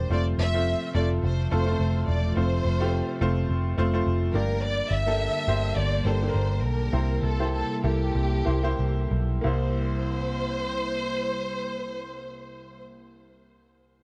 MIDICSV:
0, 0, Header, 1, 5, 480
1, 0, Start_track
1, 0, Tempo, 566038
1, 85, Time_signature, 4, 2, 24, 8
1, 4404, Tempo, 585938
1, 6324, Tempo, 634921
1, 7764, Tempo, 665188
1, 11075, End_track
2, 0, Start_track
2, 0, Title_t, "Violin section"
2, 0, Program_c, 0, 48
2, 102, Note_on_c, 0, 74, 112
2, 206, Note_off_c, 0, 74, 0
2, 339, Note_on_c, 0, 76, 122
2, 779, Note_off_c, 0, 76, 0
2, 805, Note_on_c, 0, 74, 104
2, 912, Note_off_c, 0, 74, 0
2, 1049, Note_on_c, 0, 72, 89
2, 1262, Note_off_c, 0, 72, 0
2, 1272, Note_on_c, 0, 72, 94
2, 1724, Note_off_c, 0, 72, 0
2, 1766, Note_on_c, 0, 74, 88
2, 1988, Note_off_c, 0, 74, 0
2, 2018, Note_on_c, 0, 72, 103
2, 2731, Note_off_c, 0, 72, 0
2, 3674, Note_on_c, 0, 70, 106
2, 3901, Note_off_c, 0, 70, 0
2, 3917, Note_on_c, 0, 74, 124
2, 4156, Note_on_c, 0, 76, 127
2, 4160, Note_off_c, 0, 74, 0
2, 4865, Note_on_c, 0, 74, 118
2, 4869, Note_off_c, 0, 76, 0
2, 5105, Note_off_c, 0, 74, 0
2, 5107, Note_on_c, 0, 72, 99
2, 5578, Note_on_c, 0, 70, 103
2, 5586, Note_off_c, 0, 72, 0
2, 6069, Note_on_c, 0, 69, 100
2, 6071, Note_off_c, 0, 70, 0
2, 6312, Note_off_c, 0, 69, 0
2, 6322, Note_on_c, 0, 69, 102
2, 6538, Note_off_c, 0, 69, 0
2, 6554, Note_on_c, 0, 67, 94
2, 7484, Note_off_c, 0, 67, 0
2, 7777, Note_on_c, 0, 72, 105
2, 10186, Note_off_c, 0, 72, 0
2, 11075, End_track
3, 0, Start_track
3, 0, Title_t, "Grand piano"
3, 0, Program_c, 1, 0
3, 0, Control_c, 1, 64, 127
3, 0, Note_on_c, 1, 57, 59
3, 0, Note_on_c, 1, 58, 85
3, 0, Note_on_c, 1, 62, 81
3, 0, Note_on_c, 1, 67, 80
3, 0, Note_on_c, 1, 74, 96
3, 87, Note_off_c, 1, 57, 0
3, 87, Note_on_c, 1, 57, 76
3, 88, Note_on_c, 1, 60, 63
3, 91, Note_on_c, 1, 65, 71
3, 95, Note_on_c, 1, 72, 83
3, 96, Control_c, 1, 64, 0
3, 98, Note_off_c, 1, 58, 0
3, 99, Note_off_c, 1, 62, 0
3, 102, Note_off_c, 1, 67, 0
3, 103, Note_off_c, 1, 74, 0
3, 262, Control_c, 1, 64, 127
3, 422, Note_off_c, 1, 57, 0
3, 423, Note_off_c, 1, 60, 0
3, 425, Note_off_c, 1, 65, 0
3, 427, Note_off_c, 1, 72, 0
3, 456, Note_on_c, 1, 57, 76
3, 457, Note_on_c, 1, 60, 72
3, 462, Note_on_c, 1, 65, 71
3, 465, Note_on_c, 1, 72, 87
3, 774, Note_off_c, 1, 57, 0
3, 774, Note_off_c, 1, 60, 0
3, 777, Note_off_c, 1, 65, 0
3, 778, Note_off_c, 1, 72, 0
3, 800, Note_on_c, 1, 57, 78
3, 802, Note_on_c, 1, 60, 71
3, 802, Note_on_c, 1, 65, 73
3, 807, Note_on_c, 1, 69, 85
3, 1243, Note_off_c, 1, 57, 0
3, 1244, Note_off_c, 1, 60, 0
3, 1244, Note_off_c, 1, 65, 0
3, 1246, Note_off_c, 1, 69, 0
3, 1282, Note_on_c, 1, 57, 83
3, 1282, Note_on_c, 1, 60, 72
3, 1288, Note_on_c, 1, 65, 79
3, 1290, Note_on_c, 1, 69, 87
3, 1397, Note_off_c, 1, 57, 0
3, 1401, Note_off_c, 1, 60, 0
3, 1403, Note_off_c, 1, 65, 0
3, 1409, Note_off_c, 1, 69, 0
3, 1410, Note_on_c, 1, 57, 72
3, 1414, Note_on_c, 1, 60, 69
3, 1415, Note_on_c, 1, 65, 70
3, 1420, Note_on_c, 1, 72, 83
3, 1950, Note_off_c, 1, 57, 0
3, 1953, Note_off_c, 1, 60, 0
3, 1953, Note_off_c, 1, 65, 0
3, 1956, Note_off_c, 1, 72, 0
3, 1998, Note_on_c, 1, 57, 82
3, 2004, Note_on_c, 1, 60, 70
3, 2006, Note_on_c, 1, 65, 70
3, 2009, Note_on_c, 1, 72, 90
3, 2338, Note_off_c, 1, 57, 0
3, 2341, Note_off_c, 1, 60, 0
3, 2342, Note_off_c, 1, 65, 0
3, 2343, Note_off_c, 1, 72, 0
3, 2376, Note_on_c, 1, 57, 82
3, 2378, Note_on_c, 1, 60, 71
3, 2383, Note_on_c, 1, 65, 69
3, 2385, Note_on_c, 1, 67, 94
3, 2693, Note_off_c, 1, 57, 0
3, 2694, Note_off_c, 1, 60, 0
3, 2697, Note_off_c, 1, 65, 0
3, 2697, Note_off_c, 1, 67, 0
3, 2722, Note_on_c, 1, 57, 93
3, 2724, Note_on_c, 1, 60, 87
3, 2726, Note_on_c, 1, 65, 90
3, 2732, Note_on_c, 1, 72, 103
3, 3163, Note_off_c, 1, 57, 0
3, 3164, Note_off_c, 1, 60, 0
3, 3165, Note_off_c, 1, 65, 0
3, 3168, Note_off_c, 1, 72, 0
3, 3202, Note_on_c, 1, 57, 91
3, 3206, Note_on_c, 1, 60, 96
3, 3209, Note_on_c, 1, 65, 88
3, 3213, Note_on_c, 1, 72, 108
3, 3324, Note_off_c, 1, 57, 0
3, 3325, Note_off_c, 1, 60, 0
3, 3328, Note_off_c, 1, 65, 0
3, 3330, Note_off_c, 1, 72, 0
3, 3337, Note_on_c, 1, 57, 94
3, 3338, Note_on_c, 1, 60, 80
3, 3342, Note_on_c, 1, 65, 82
3, 3346, Note_on_c, 1, 72, 98
3, 3681, Note_on_c, 1, 58, 86
3, 3683, Note_off_c, 1, 57, 0
3, 3683, Note_off_c, 1, 60, 0
3, 3685, Note_off_c, 1, 65, 0
3, 3687, Note_off_c, 1, 72, 0
3, 3687, Note_on_c, 1, 43, 64
3, 3687, Note_on_c, 1, 62, 74
3, 3687, Note_on_c, 1, 67, 74
3, 3690, Note_on_c, 1, 74, 86
3, 3693, Control_c, 1, 64, 0
3, 3841, Control_c, 1, 64, 127
3, 4234, Note_off_c, 1, 58, 0
3, 4237, Note_off_c, 1, 62, 0
3, 4238, Note_off_c, 1, 67, 0
3, 4239, Note_off_c, 1, 74, 0
3, 4295, Note_on_c, 1, 58, 85
3, 4298, Note_on_c, 1, 62, 81
3, 4303, Note_on_c, 1, 67, 78
3, 4306, Note_on_c, 1, 69, 96
3, 4372, Note_off_c, 1, 43, 0
3, 4607, Note_off_c, 1, 58, 0
3, 4609, Note_off_c, 1, 62, 0
3, 4612, Note_off_c, 1, 67, 0
3, 4613, Note_off_c, 1, 69, 0
3, 4637, Note_on_c, 1, 58, 82
3, 4638, Note_on_c, 1, 62, 71
3, 4640, Note_on_c, 1, 67, 82
3, 4643, Note_on_c, 1, 72, 93
3, 5070, Note_off_c, 1, 58, 0
3, 5071, Note_off_c, 1, 62, 0
3, 5071, Note_off_c, 1, 67, 0
3, 5073, Note_off_c, 1, 72, 0
3, 5109, Note_on_c, 1, 58, 81
3, 5112, Note_on_c, 1, 62, 68
3, 5114, Note_on_c, 1, 67, 72
3, 5120, Note_on_c, 1, 69, 90
3, 5230, Note_off_c, 1, 58, 0
3, 5231, Note_off_c, 1, 62, 0
3, 5232, Note_off_c, 1, 67, 0
3, 5235, Note_off_c, 1, 69, 0
3, 5242, Note_on_c, 1, 58, 73
3, 5244, Note_on_c, 1, 62, 68
3, 5246, Note_on_c, 1, 67, 67
3, 5252, Note_on_c, 1, 69, 63
3, 5295, Note_off_c, 1, 69, 0
3, 5303, Note_on_c, 1, 70, 80
3, 5780, Note_off_c, 1, 58, 0
3, 5781, Note_off_c, 1, 62, 0
3, 5783, Note_off_c, 1, 67, 0
3, 5811, Note_off_c, 1, 70, 0
3, 5824, Note_on_c, 1, 58, 77
3, 5825, Note_on_c, 1, 64, 70
3, 5827, Note_on_c, 1, 48, 65
3, 5830, Note_on_c, 1, 67, 71
3, 5831, Note_on_c, 1, 72, 80
3, 5842, Control_c, 1, 64, 0
3, 5987, Control_c, 1, 64, 127
3, 6172, Note_off_c, 1, 58, 0
3, 6173, Note_off_c, 1, 64, 0
3, 6175, Note_off_c, 1, 67, 0
3, 6176, Note_off_c, 1, 72, 0
3, 6206, Note_on_c, 1, 58, 75
3, 6208, Note_on_c, 1, 64, 68
3, 6213, Note_on_c, 1, 67, 76
3, 6214, Note_on_c, 1, 72, 85
3, 6523, Note_off_c, 1, 48, 0
3, 6523, Note_off_c, 1, 58, 0
3, 6524, Note_off_c, 1, 64, 0
3, 6526, Note_off_c, 1, 67, 0
3, 6526, Note_off_c, 1, 72, 0
3, 6549, Note_on_c, 1, 58, 79
3, 6550, Note_on_c, 1, 64, 71
3, 6556, Note_on_c, 1, 67, 72
3, 6557, Note_on_c, 1, 69, 88
3, 6985, Note_off_c, 1, 58, 0
3, 6986, Note_off_c, 1, 64, 0
3, 6989, Note_off_c, 1, 67, 0
3, 6989, Note_off_c, 1, 69, 0
3, 7014, Note_on_c, 1, 58, 76
3, 7020, Note_on_c, 1, 64, 72
3, 7020, Note_on_c, 1, 67, 69
3, 7024, Note_on_c, 1, 72, 80
3, 7138, Note_off_c, 1, 58, 0
3, 7143, Note_off_c, 1, 64, 0
3, 7146, Note_off_c, 1, 67, 0
3, 7148, Note_off_c, 1, 72, 0
3, 7149, Note_on_c, 1, 58, 79
3, 7154, Note_on_c, 1, 64, 80
3, 7157, Note_on_c, 1, 67, 83
3, 7161, Note_on_c, 1, 72, 99
3, 7706, Note_off_c, 1, 58, 0
3, 7708, Note_off_c, 1, 64, 0
3, 7710, Note_off_c, 1, 67, 0
3, 7712, Note_off_c, 1, 72, 0
3, 7742, Note_on_c, 1, 58, 91
3, 7761, Note_on_c, 1, 36, 85
3, 7761, Note_on_c, 1, 64, 78
3, 7772, Control_c, 1, 64, 0
3, 7780, Note_on_c, 1, 72, 86
3, 7914, Control_c, 1, 64, 127
3, 10152, Note_off_c, 1, 58, 0
3, 10170, Note_off_c, 1, 36, 0
3, 10170, Note_off_c, 1, 64, 0
3, 10189, Note_off_c, 1, 72, 0
3, 11075, End_track
4, 0, Start_track
4, 0, Title_t, "Analog synth pad"
4, 0, Program_c, 2, 89
4, 79, Note_on_c, 2, 53, 80
4, 81, Note_on_c, 2, 57, 89
4, 83, Note_on_c, 2, 48, 85
4, 87, Note_on_c, 2, 65, 93
4, 3646, Note_off_c, 2, 53, 0
4, 3648, Note_off_c, 2, 48, 0
4, 3648, Note_off_c, 2, 57, 0
4, 3650, Note_off_c, 2, 65, 0
4, 3690, Note_on_c, 2, 50, 87
4, 3693, Note_on_c, 2, 55, 72
4, 3694, Note_on_c, 2, 58, 74
4, 3694, Note_on_c, 2, 67, 86
4, 5812, Note_off_c, 2, 50, 0
4, 5814, Note_off_c, 2, 55, 0
4, 5814, Note_off_c, 2, 67, 0
4, 5834, Note_on_c, 2, 48, 89
4, 5835, Note_on_c, 2, 55, 88
4, 5838, Note_on_c, 2, 64, 101
4, 7738, Note_off_c, 2, 58, 0
4, 7746, Note_off_c, 2, 48, 0
4, 7747, Note_off_c, 2, 55, 0
4, 7748, Note_off_c, 2, 64, 0
4, 7761, Note_on_c, 2, 48, 93
4, 7761, Note_on_c, 2, 55, 76
4, 7762, Note_on_c, 2, 64, 103
4, 7764, Note_on_c, 2, 58, 78
4, 10169, Note_off_c, 2, 48, 0
4, 10169, Note_off_c, 2, 55, 0
4, 10171, Note_off_c, 2, 64, 0
4, 10172, Note_off_c, 2, 58, 0
4, 11075, End_track
5, 0, Start_track
5, 0, Title_t, "Picked electric bass"
5, 0, Program_c, 3, 34
5, 86, Note_on_c, 3, 29, 99
5, 282, Note_off_c, 3, 29, 0
5, 323, Note_on_c, 3, 29, 93
5, 630, Note_off_c, 3, 29, 0
5, 804, Note_on_c, 3, 29, 99
5, 1001, Note_off_c, 3, 29, 0
5, 1046, Note_on_c, 3, 29, 114
5, 1242, Note_off_c, 3, 29, 0
5, 1291, Note_on_c, 3, 29, 87
5, 1485, Note_off_c, 3, 29, 0
5, 1522, Note_on_c, 3, 29, 107
5, 1720, Note_off_c, 3, 29, 0
5, 1763, Note_on_c, 3, 28, 92
5, 1960, Note_off_c, 3, 28, 0
5, 2009, Note_on_c, 3, 29, 106
5, 2203, Note_off_c, 3, 29, 0
5, 2247, Note_on_c, 3, 29, 100
5, 2553, Note_off_c, 3, 29, 0
5, 2726, Note_on_c, 3, 29, 108
5, 2922, Note_off_c, 3, 29, 0
5, 2963, Note_on_c, 3, 29, 125
5, 3160, Note_off_c, 3, 29, 0
5, 3206, Note_on_c, 3, 29, 89
5, 3401, Note_off_c, 3, 29, 0
5, 3446, Note_on_c, 3, 29, 108
5, 3642, Note_off_c, 3, 29, 0
5, 3680, Note_on_c, 3, 31, 105
5, 4075, Note_off_c, 3, 31, 0
5, 4161, Note_on_c, 3, 31, 91
5, 4468, Note_off_c, 3, 31, 0
5, 4637, Note_on_c, 3, 31, 92
5, 4830, Note_off_c, 3, 31, 0
5, 4870, Note_on_c, 3, 31, 123
5, 5065, Note_off_c, 3, 31, 0
5, 5104, Note_on_c, 3, 31, 98
5, 5302, Note_off_c, 3, 31, 0
5, 5345, Note_on_c, 3, 31, 116
5, 5588, Note_off_c, 3, 31, 0
5, 5588, Note_on_c, 3, 35, 85
5, 5787, Note_off_c, 3, 35, 0
5, 5828, Note_on_c, 3, 36, 109
5, 6030, Note_off_c, 3, 36, 0
5, 6068, Note_on_c, 3, 36, 91
5, 6384, Note_off_c, 3, 36, 0
5, 6555, Note_on_c, 3, 36, 96
5, 6747, Note_off_c, 3, 36, 0
5, 6787, Note_on_c, 3, 36, 120
5, 6983, Note_off_c, 3, 36, 0
5, 7027, Note_on_c, 3, 36, 100
5, 7225, Note_off_c, 3, 36, 0
5, 7271, Note_on_c, 3, 36, 94
5, 7471, Note_off_c, 3, 36, 0
5, 7514, Note_on_c, 3, 35, 101
5, 7718, Note_off_c, 3, 35, 0
5, 7769, Note_on_c, 3, 36, 92
5, 10178, Note_off_c, 3, 36, 0
5, 11075, End_track
0, 0, End_of_file